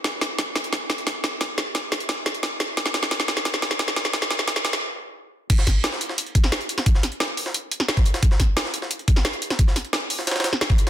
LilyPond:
\new DrumStaff \with { instrumentName = "Drums" } \drummode { \time 4/4 \tempo 4 = 176 <hh bd sn>8 <hh sn>8 <hh bd sn>8 <hh sn>16 hh16 <hh bd sn>8 <hh sn>16 hh16 <hh bd sn>8 <hh sn>8 | <hh bd sn>8 <hh sn>8 <hh bd sn>8 <hh sn>16 hh16 <hh bd sn>8 <hh sn>16 hh16 <hh bd sn>8 <hh sn>8 | <hh bd sn>16 sn16 <hh sn>16 sn16 <hh bd sn>16 sn16 <hh sn>16 <hh sn>16 <hh bd sn>16 sn16 <hh sn>16 <hh sn>16 <hh bd sn>16 sn16 <hh sn>16 sn16 | <hh bd sn>16 <hh sn>16 <hh sn>16 sn16 <hh bd sn>16 sn16 <hh sn>16 <hh sn>16 r4 r4 |
<cymc hh bd>16 sn16 <hh bd sn>8 <hh sn>16 sn16 hh16 sn16 hh16 hh16 <hh bd>16 sn16 <hh sn>16 hh16 hh16 <hh sn>16 | <hh bd>16 sn16 <hh sn>16 hh16 <hh sn>8 <hh hho>16 sn16 hh8 hh16 sn16 <hh sn>16 <hh bd sn>16 hh16 <hh sn>16 | <hh bd>16 sn16 <hh bd sn>8 <hh sn>16 sn16 hh16 sn16 hh16 hh16 <hh bd>16 sn16 <hh sn>16 hh16 hh16 <hh sn>16 | <hh bd>16 sn16 <hh sn>16 hh16 <hh sn>8 <hh hho>16 sn16 <hh sn>32 <hh sn>32 <hh sn>32 <hh sn>32 <hh sn>16 sn16 <hh sn>16 <hh bd sn>16 hh8 | }